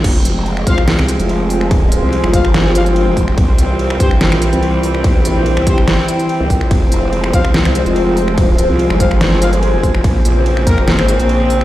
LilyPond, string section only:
\new Staff \with { instrumentName = "String section" } { \clef bass \time 4/4 \key f \minor \tempo 4 = 144 << { c'1~ | c'1~ | c'1~ | c'1~ |
c'1~ | c'1 | c'1 | } \\ { <f aes>1~ | <f aes>1 | <e g>1~ | <e g>1 |
<f aes>1~ | <f aes>1 | <des bes>1 | } >> }